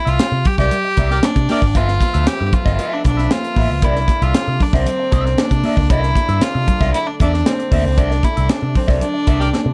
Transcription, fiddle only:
0, 0, Header, 1, 2, 480
1, 0, Start_track
1, 0, Tempo, 518583
1, 1621, Time_signature, 4, 2, 24, 8
1, 9010, End_track
2, 0, Start_track
2, 0, Title_t, "Fiddle"
2, 0, Program_c, 0, 110
2, 77, Note_on_c, 0, 65, 99
2, 433, Note_on_c, 0, 67, 97
2, 447, Note_off_c, 0, 65, 0
2, 541, Note_off_c, 0, 67, 0
2, 547, Note_on_c, 0, 67, 109
2, 1161, Note_on_c, 0, 62, 94
2, 1174, Note_off_c, 0, 67, 0
2, 1637, Note_on_c, 0, 65, 97
2, 1651, Note_off_c, 0, 62, 0
2, 2101, Note_on_c, 0, 67, 102
2, 2115, Note_off_c, 0, 65, 0
2, 2278, Note_off_c, 0, 67, 0
2, 2278, Note_on_c, 0, 67, 78
2, 2347, Note_on_c, 0, 65, 87
2, 2361, Note_off_c, 0, 67, 0
2, 2713, Note_on_c, 0, 62, 84
2, 2727, Note_off_c, 0, 65, 0
2, 2828, Note_off_c, 0, 62, 0
2, 2835, Note_on_c, 0, 62, 94
2, 3065, Note_on_c, 0, 65, 100
2, 3079, Note_off_c, 0, 62, 0
2, 3557, Note_on_c, 0, 64, 89
2, 3570, Note_off_c, 0, 65, 0
2, 3914, Note_on_c, 0, 65, 97
2, 3928, Note_off_c, 0, 64, 0
2, 4281, Note_on_c, 0, 62, 85
2, 4295, Note_off_c, 0, 65, 0
2, 4392, Note_on_c, 0, 60, 98
2, 4406, Note_off_c, 0, 62, 0
2, 4983, Note_on_c, 0, 62, 97
2, 4997, Note_off_c, 0, 60, 0
2, 5463, Note_on_c, 0, 64, 99
2, 5477, Note_off_c, 0, 62, 0
2, 5949, Note_on_c, 0, 65, 101
2, 5963, Note_off_c, 0, 64, 0
2, 6418, Note_off_c, 0, 65, 0
2, 6423, Note_on_c, 0, 64, 103
2, 6543, Note_on_c, 0, 62, 93
2, 6557, Note_off_c, 0, 64, 0
2, 6662, Note_off_c, 0, 62, 0
2, 6668, Note_on_c, 0, 62, 100
2, 6908, Note_on_c, 0, 60, 86
2, 6922, Note_off_c, 0, 62, 0
2, 7384, Note_on_c, 0, 62, 97
2, 7398, Note_off_c, 0, 60, 0
2, 7626, Note_on_c, 0, 64, 88
2, 7640, Note_off_c, 0, 62, 0
2, 7874, Note_on_c, 0, 62, 93
2, 7888, Note_off_c, 0, 64, 0
2, 8117, Note_on_c, 0, 60, 79
2, 8131, Note_off_c, 0, 62, 0
2, 8344, Note_off_c, 0, 60, 0
2, 8349, Note_on_c, 0, 62, 93
2, 9010, Note_off_c, 0, 62, 0
2, 9010, End_track
0, 0, End_of_file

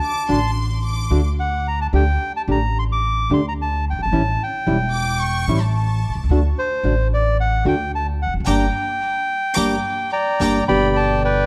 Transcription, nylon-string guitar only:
0, 0, Header, 1, 2, 480
1, 0, Start_track
1, 0, Key_signature, -2, "minor"
1, 0, Tempo, 545455
1, 1699, Time_signature, 4, 2, 24, 8
1, 7930, Tempo, 554017
1, 10052, End_track
2, 0, Start_track
2, 0, Title_t, "Nylon-string guitar"
2, 0, Program_c, 0, 24
2, 252, Note_on_c, 0, 50, 59
2, 255, Note_on_c, 0, 57, 75
2, 255, Note_on_c, 0, 62, 77
2, 257, Note_on_c, 0, 66, 68
2, 330, Note_off_c, 0, 50, 0
2, 331, Note_off_c, 0, 57, 0
2, 331, Note_off_c, 0, 62, 0
2, 333, Note_off_c, 0, 66, 0
2, 974, Note_on_c, 0, 50, 64
2, 977, Note_on_c, 0, 57, 66
2, 980, Note_on_c, 0, 66, 74
2, 981, Note_on_c, 0, 62, 71
2, 1053, Note_off_c, 0, 50, 0
2, 1054, Note_off_c, 0, 57, 0
2, 1056, Note_off_c, 0, 62, 0
2, 1056, Note_off_c, 0, 66, 0
2, 1695, Note_on_c, 0, 50, 65
2, 1699, Note_on_c, 0, 57, 70
2, 1701, Note_on_c, 0, 62, 76
2, 1707, Note_on_c, 0, 67, 73
2, 1777, Note_off_c, 0, 50, 0
2, 1779, Note_off_c, 0, 57, 0
2, 1780, Note_off_c, 0, 62, 0
2, 1783, Note_off_c, 0, 67, 0
2, 2180, Note_on_c, 0, 50, 63
2, 2185, Note_on_c, 0, 57, 61
2, 2186, Note_on_c, 0, 62, 66
2, 2187, Note_on_c, 0, 67, 71
2, 2261, Note_off_c, 0, 50, 0
2, 2263, Note_off_c, 0, 57, 0
2, 2264, Note_off_c, 0, 62, 0
2, 2265, Note_off_c, 0, 67, 0
2, 2909, Note_on_c, 0, 50, 68
2, 2911, Note_on_c, 0, 57, 67
2, 2916, Note_on_c, 0, 67, 81
2, 2919, Note_on_c, 0, 62, 67
2, 2988, Note_off_c, 0, 50, 0
2, 2988, Note_off_c, 0, 57, 0
2, 2991, Note_off_c, 0, 67, 0
2, 2992, Note_off_c, 0, 62, 0
2, 3630, Note_on_c, 0, 52, 72
2, 3633, Note_on_c, 0, 55, 63
2, 3635, Note_on_c, 0, 64, 68
2, 3636, Note_on_c, 0, 61, 82
2, 3707, Note_off_c, 0, 52, 0
2, 3708, Note_off_c, 0, 55, 0
2, 3710, Note_off_c, 0, 61, 0
2, 3710, Note_off_c, 0, 64, 0
2, 4106, Note_on_c, 0, 52, 63
2, 4108, Note_on_c, 0, 55, 65
2, 4112, Note_on_c, 0, 61, 59
2, 4114, Note_on_c, 0, 64, 75
2, 4185, Note_off_c, 0, 52, 0
2, 4186, Note_off_c, 0, 55, 0
2, 4188, Note_off_c, 0, 61, 0
2, 4189, Note_off_c, 0, 64, 0
2, 4824, Note_on_c, 0, 52, 68
2, 4829, Note_on_c, 0, 55, 72
2, 4832, Note_on_c, 0, 61, 74
2, 4833, Note_on_c, 0, 64, 73
2, 4903, Note_off_c, 0, 52, 0
2, 4905, Note_off_c, 0, 55, 0
2, 4907, Note_off_c, 0, 61, 0
2, 4907, Note_off_c, 0, 64, 0
2, 5548, Note_on_c, 0, 50, 69
2, 5554, Note_on_c, 0, 57, 70
2, 5556, Note_on_c, 0, 66, 71
2, 5557, Note_on_c, 0, 62, 77
2, 5623, Note_off_c, 0, 50, 0
2, 5626, Note_off_c, 0, 57, 0
2, 5627, Note_off_c, 0, 66, 0
2, 5628, Note_off_c, 0, 62, 0
2, 6019, Note_on_c, 0, 50, 62
2, 6024, Note_on_c, 0, 57, 65
2, 6024, Note_on_c, 0, 62, 63
2, 6028, Note_on_c, 0, 66, 69
2, 6096, Note_off_c, 0, 50, 0
2, 6098, Note_off_c, 0, 57, 0
2, 6098, Note_off_c, 0, 62, 0
2, 6100, Note_off_c, 0, 66, 0
2, 6732, Note_on_c, 0, 50, 68
2, 6734, Note_on_c, 0, 57, 75
2, 6740, Note_on_c, 0, 62, 74
2, 6743, Note_on_c, 0, 66, 77
2, 6811, Note_off_c, 0, 50, 0
2, 6812, Note_off_c, 0, 57, 0
2, 6815, Note_off_c, 0, 62, 0
2, 6816, Note_off_c, 0, 66, 0
2, 7456, Note_on_c, 0, 55, 72
2, 7457, Note_on_c, 0, 62, 73
2, 7460, Note_on_c, 0, 58, 75
2, 7608, Note_off_c, 0, 62, 0
2, 7609, Note_off_c, 0, 55, 0
2, 7611, Note_off_c, 0, 58, 0
2, 8408, Note_on_c, 0, 55, 73
2, 8412, Note_on_c, 0, 62, 76
2, 8413, Note_on_c, 0, 58, 77
2, 8563, Note_off_c, 0, 55, 0
2, 8564, Note_off_c, 0, 58, 0
2, 8565, Note_off_c, 0, 62, 0
2, 9133, Note_on_c, 0, 55, 61
2, 9134, Note_on_c, 0, 58, 69
2, 9140, Note_on_c, 0, 62, 61
2, 9288, Note_off_c, 0, 55, 0
2, 9288, Note_off_c, 0, 58, 0
2, 9289, Note_off_c, 0, 62, 0
2, 9370, Note_on_c, 0, 47, 63
2, 9375, Note_on_c, 0, 50, 71
2, 9383, Note_on_c, 0, 55, 72
2, 9383, Note_on_c, 0, 59, 79
2, 9388, Note_on_c, 0, 67, 78
2, 10052, Note_off_c, 0, 47, 0
2, 10052, Note_off_c, 0, 50, 0
2, 10052, Note_off_c, 0, 55, 0
2, 10052, Note_off_c, 0, 59, 0
2, 10052, Note_off_c, 0, 67, 0
2, 10052, End_track
0, 0, End_of_file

